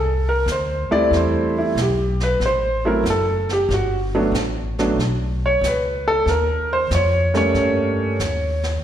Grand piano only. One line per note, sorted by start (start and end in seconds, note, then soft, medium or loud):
0.00 0.27 A4 medium
0.29 0.48 A#4 medium
0.52 0.92 C5 medium
0.91 1.72 G3 medium
0.91 1.72 A3 medium
0.91 1.72 C4 medium
0.91 1.57 E4 medium
0.91 1.12 D5 loud
1.16 1.56 C5 medium
1.58 1.77 E4 medium
1.82 2.21 G4 medium
2.23 2.42 B4 medium
2.46 2.85 C5 medium
2.85 3.03 F#3 medium
2.85 3.03 A3 medium
2.85 3.04 C4 medium
2.85 3.04 E4 medium
2.85 3.06 A#4 medium
3.10 3.50 A4 medium
3.53 3.71 G4 medium
3.74 3.99 F#4 medium
4.15 4.32 F#3 medium
4.15 4.32 A3 medium
4.15 4.33 B3 medium
4.15 4.33 D4 medium
4.79 4.97 F#3 medium
4.79 4.97 A3 medium
4.79 4.97 B3 medium
4.79 4.97 D4 medium
5.46 5.64 C#5 medium
5.68 6.07 B4 medium
6.08 6.27 A4 medium
6.29 6.70 A#4 medium
6.73 6.92 C5 medium
6.95 7.35 C#5 medium
7.34 8.15 G3 medium
7.34 8.15 A3 medium
7.34 8.15 A#3 medium
7.34 8.16 C#4 medium
7.34 8.71 C#5 medium